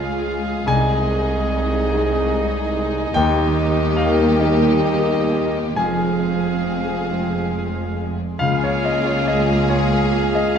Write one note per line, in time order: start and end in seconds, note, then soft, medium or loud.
0.00 0.63 C#2 medium
0.00 0.70 C#2 soft
0.00 0.70 C#3 soft
0.00 0.44 G#3 soft
0.00 0.64 G#3 soft
0.00 3.10 G#3 medium
0.00 3.10 G#3 soft
0.00 0.21 C#4 soft
0.00 0.62 F4 soft
0.00 0.63 F4 soft
0.00 0.64 F4 soft
0.00 0.70 F4 soft
0.00 0.64 G#4 soft
0.00 0.65 G#4 medium
0.00 1.50 G#4 soft
0.00 3.10 G#4 soft
0.00 0.63 C#5 medium
0.00 0.69 D#5 medium
0.00 0.69 F5 medium
0.00 0.70 F5 medium
0.22 0.70 C#4 soft
0.45 1.08 G#3 soft
0.66 1.89 C2 medium
0.66 3.15 C2 medium
0.66 3.18 C3 medium
0.66 5.62 D#4 medium
0.66 5.74 D#4 medium
0.66 3.11 G#4 medium
0.66 3.15 D#5 medium
0.66 2.70 G#5 medium
0.88 2.72 C4 soft
1.09 2.93 G#3 soft
1.31 1.71 D#4 soft
1.51 1.91 G#4 soft
1.72 2.12 D#4 medium
1.92 3.11 G#3 soft
1.92 3.11 D#4 soft
1.92 2.32 G#4 medium
1.92 3.11 G#4 soft
2.13 2.52 D#4 medium
2.33 3.18 G#4 medium
2.53 3.54 D#4 medium
2.73 3.18 C4 medium
2.94 3.18 G#3 soft
3.14 5.74 D#2 medium
3.14 4.38 D#2 medium
3.14 5.82 D#3 medium
3.14 5.62 G3 medium
3.14 5.74 A#3 medium
3.14 4.37 G4 medium
3.14 5.75 G4 medium
3.14 4.37 D#5 medium
3.14 3.94 G5 loud
3.35 5.30 A#3 medium
3.56 5.53 D#4 medium
3.77 4.18 G4 soft
3.96 4.39 A#4 medium
3.96 4.37 F5 medium
4.19 4.62 G4 medium
4.40 5.74 A#3 soft
4.40 5.74 D#4 soft
4.40 5.74 G4 soft
4.40 5.62 G4 medium
4.40 4.84 A#4 soft
4.40 5.73 D#5 medium
4.40 5.61 D#5 medium
4.63 5.06 G4 soft
4.85 5.81 A#4 soft
5.08 5.81 G4 soft
5.31 5.81 A#3 soft
5.54 5.81 D#4 soft
5.76 8.17 F1 soft
5.76 8.17 F2 medium
5.76 7.07 F2 soft
5.76 9.67 F3 medium
5.76 8.17 G#3 soft
5.76 8.05 G#3 medium
5.76 8.17 C4 medium
5.76 8.05 F4 medium
5.76 8.17 G#4 medium
5.76 8.05 G#4 soft
5.76 8.05 F5 soft
5.76 7.93 G#5 medium
5.99 7.96 G#3 soft
6.22 6.65 C4 soft
6.44 6.88 G#4 soft
6.67 7.10 C4 soft
6.89 7.31 G#4 soft
7.11 8.37 G#3 soft
7.11 7.52 C4 soft
7.11 8.37 C4 soft
7.11 8.37 G#4 soft
7.33 7.74 G#4 soft
7.53 8.18 C4 soft
7.75 9.25 G#4 soft
7.97 8.82 G#3 soft
8.19 8.44 C4 soft
8.39 9.65 C#2 medium
8.39 10.58 C#2 medium
8.39 10.58 C#3 medium
8.39 10.58 G#3 medium
8.39 10.58 A#3 medium
8.39 9.65 F4 medium
8.39 10.58 F4 medium
8.39 10.58 G#4 medium
8.39 9.66 G#4 medium
8.39 8.60 F5 medium
8.39 9.66 F5 medium
8.61 10.53 C#4 soft
8.61 8.83 C#5 medium
8.83 10.58 G#3 soft
8.83 9.04 D#5 medium
9.04 9.46 F4 soft
9.04 9.25 C#5 medium
9.26 9.67 G#4 soft
9.26 9.67 D#5 medium
9.47 9.89 F4 medium
9.68 10.58 G#3 soft
9.68 10.58 F4 soft
9.68 10.09 G#4 soft
9.68 10.58 G#4 soft
9.68 10.58 G#4 medium
9.68 10.29 C#5 medium
9.68 10.58 F5 medium
9.90 10.31 F4 soft
10.11 10.58 G#4 soft
10.33 10.58 F4 soft
10.33 10.54 D#5 medium
10.54 10.58 C#4 soft